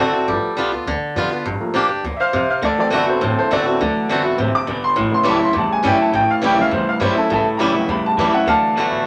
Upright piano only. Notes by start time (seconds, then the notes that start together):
0.00 A4 D5
0.28 F3 A3 B3
1.59 F3 A3 A#3
2.17 C5 E5
2.21 F5
2.35 C5 F5
2.50 C5 F5
2.65 A4 D5
2.78 E3 F#3 C4 A4 D5
2.94 A4 D5
3.09 A4 C5
3.22 E3 F#3 C4 A4 C5
3.38 A4 C5
3.53 A4 D5
3.80 E3 F#3
4.38 E3 F#3 C4
4.55 D6
4.84 C6
5.12 C#3 B3 C6
5.29 A5
5.44 C6
5.58 A5
5.73 G#5
5.87 G5
6.01 A5
6.15 G5
6.31 F5
6.46 G5
6.59 C#3 G3 B3 F5
6.74 C5
6.89 F5
7.03 C5
7.18 A4
7.31 C#3 G3 B3 E4 A4
7.57 A#5
7.61 B5
7.73 C#3 G3 B3
7.90 B5
8.06 A5
8.19 A5
8.34 F#5
8.46 E3 F#3 F5 A5